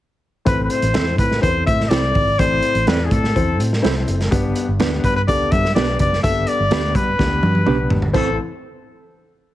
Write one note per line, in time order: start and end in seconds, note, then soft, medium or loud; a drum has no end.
0.45 0.67 A1 loud
0.45 1.14 A2 medium
0.45 0.81 C4 medium
0.45 0.81 E4 medium
0.45 0.81 A4 medium
0.45 0.63 B4 medium
0.45 0.81 C5 medium
0.45 kick loud
0.45 closed hi-hat medium
0.64 0.72 B4 medium
0.70 1.18 C5 medium
0.70 closed hi-hat medium
0.82 0.96 A1 medium
0.82 closed hi-hat medium
0.94 1.19 E2 medium
0.94 1.29 C4 medium
0.94 1.04 C4 medium
0.94 1.30 E4 medium
0.94 1.05 E4 medium
0.94 1.30 A4 medium
0.94 1.05 A4 medium
0.94 1.30 C5 medium
0.94 1.05 C5 medium
0.94 snare loud
0.94 closed hi-hat medium
1.18 1.39 A2 medium
1.18 1.41 B4 medium
1.18 kick medium
1.18 closed hi-hat medium
1.31 snare soft
1.41 1.63 E2 medium
1.41 1.77 C4 medium
1.41 1.78 E4 medium
1.41 1.78 A4 medium
1.41 1.48 B4 medium
1.41 1.65 C5 medium
1.41 kick medium
1.41 closed hi-hat medium
1.48 1.81 C5 medium
1.66 1.88 A2 medium
1.66 1.84 E5 medium
1.66 kick medium
1.66 closed hi-hat medium
1.80 1.90 E5 medium
1.80 snare soft
1.89 2.11 C2 medium
1.89 2.26 C4 medium
1.89 2.01 C4 medium
1.89 2.26 E4 medium
1.89 2.01 E4 medium
1.89 2.26 A4 medium
1.89 2.01 A4 medium
1.89 2.26 C5 medium
1.89 2.01 C5 medium
1.89 2.40 D5 loud
1.89 snare medium
1.89 closed hi-hat medium
2.15 2.35 G#1 medium
2.15 kick medium
2.15 open hi-hat soft
2.39 2.59 A1 loud
2.39 3.08 A2 medium
2.39 2.75 C4 medium
2.39 2.75 E4 medium
2.39 2.75 A4 medium
2.39 2.89 C5 loud
2.39 2.75 D5 medium
2.39 kick loud
2.39 closed hi-hat medium
2.62 closed hi-hat medium
2.75 2.85 A1 loud
2.75 closed hi-hat medium
2.87 3.08 E2 medium
2.87 3.23 C4 medium
2.87 2.97 C4 medium
2.87 3.23 E4 medium
2.87 2.98 E4 medium
2.87 3.23 A4 medium
2.87 2.98 A4 medium
2.87 3.06 B4 medium
2.87 2.98 C5 medium
2.87 3.23 D5 medium
2.87 snare medium
2.87 closed hi-hat medium
3.05 3.13 G#4 medium
3.11 3.32 A2 medium
3.11 3.60 A4 medium
3.11 kick medium
3.11 closed hi-hat medium
3.24 snare soft
3.35 3.60 E2 medium
3.35 3.71 C4 medium
3.35 3.71 E4 medium
3.35 3.71 A4 medium
3.35 3.71 C5 medium
3.35 kick medium
3.35 closed hi-hat medium
3.60 3.80 A2 medium
3.60 closed hi-hat medium
3.73 snare soft
3.82 4.04 C2 medium
3.82 4.18 C4 medium
3.82 3.93 C4 medium
3.82 4.18 E4 medium
3.82 3.94 E4 medium
3.82 4.18 A4 medium
3.82 3.94 A4 medium
3.82 4.18 C5 medium
3.82 3.94 C5 medium
3.82 snare medium
3.82 closed hi-hat medium
4.08 4.28 F#1 medium
4.08 closed hi-hat medium
4.21 snare soft
4.21 closed hi-hat soft
4.31 4.52 G1 medium
4.31 5.00 G2 medium
4.31 4.67 B3 medium
4.31 4.67 D4 medium
4.31 4.67 G4 medium
4.31 4.67 B4 medium
4.31 kick loud
4.31 closed hi-hat loud
4.55 closed hi-hat medium
4.68 4.78 G1 medium
4.80 5.00 D2 medium
4.80 4.89 B3 medium
4.80 5.15 B3 medium
4.80 4.90 D4 medium
4.80 5.15 D4 medium
4.80 5.15 G4 medium
4.80 4.90 G4 medium
4.80 5.15 B4 medium
4.80 4.90 B4 medium
4.80 snare loud
4.80 closed hi-hat medium
5.04 5.28 G2 medium
5.04 5.16 B4 medium
5.04 kick medium
5.04 closed hi-hat medium
5.16 5.22 B4 medium
5.27 5.48 D2 medium
5.27 5.63 B3 medium
5.27 5.63 D4 medium
5.27 5.63 G4 medium
5.27 5.63 A4 medium
5.27 5.53 D5 loud
5.27 kick medium
5.27 closed hi-hat medium
5.52 5.72 G2 medium
5.52 5.74 E5 medium
5.52 kick loud
5.52 closed hi-hat medium
5.65 snare soft
5.75 5.96 B1 medium
5.75 6.11 B3 medium
5.75 5.85 B3 medium
5.75 6.11 D4 medium
5.75 5.86 D4 medium
5.75 6.11 G4 medium
5.75 5.86 G4 medium
5.75 5.82 A#4 medium
5.75 5.86 B4 medium
5.75 5.98 D5 medium
5.75 snare loud
5.75 closed hi-hat medium
5.82 6.14 B4 medium
5.99 6.20 F#1 medium
5.99 6.22 D5 medium
5.99 kick medium
5.99 closed hi-hat medium
6.13 snare soft
6.23 6.44 G1 medium
6.23 6.91 G2 medium
6.23 6.29 A3 medium
6.23 6.58 D4 medium
6.23 6.58 G4 medium
6.23 6.59 A4 medium
6.23 6.49 E5 loud
6.23 kick loud
6.23 closed hi-hat loud
6.29 6.61 B3 medium
6.47 6.97 D5 medium
6.47 closed hi-hat medium
6.60 6.70 G1 medium
6.71 6.95 D2 medium
6.71 6.81 B3 medium
6.71 7.07 B3 medium
6.71 6.81 D4 medium
6.71 7.07 D4 medium
6.71 6.81 G4 medium
6.71 7.07 G4 medium
6.71 6.78 A4 medium
6.71 6.82 B4 medium
6.71 snare loud
6.71 closed hi-hat medium
6.78 7.10 B4 medium
6.95 7.15 G2 medium
6.95 7.91 B4 medium
6.95 kick medium
6.95 closed hi-hat medium
7.19 7.39 D2 medium
7.19 7.54 B3 medium
7.19 7.54 D4 medium
7.19 7.54 G4 medium
7.19 7.54 B4 medium
7.19 kick medium
7.19 snare medium
7.43 7.63 G2 medium
7.43 high tom medium
7.55 high tom medium
7.66 7.86 B1 medium
7.66 8.01 B3 medium
7.66 7.76 B3 medium
7.66 8.01 D4 medium
7.66 7.76 D4 medium
7.66 8.01 G4 medium
7.66 7.77 G4 medium
7.66 8.01 B4 medium
7.66 7.77 B4 medium
7.66 mid tom medium
7.90 8.10 G#1 medium
7.90 floor tom medium
8.02 floor tom medium
8.13 8.36 A1 medium
8.13 8.37 A1 loud
8.13 8.36 C4 medium
8.13 8.29 C4 medium
8.13 8.36 E4 medium
8.13 8.29 E4 medium
8.13 8.36 A4 medium
8.13 8.37 A4 medium
8.13 8.29 A4 medium
8.13 8.36 C5 medium
8.13 8.30 C5 medium
8.13 kick medium
8.13 splash medium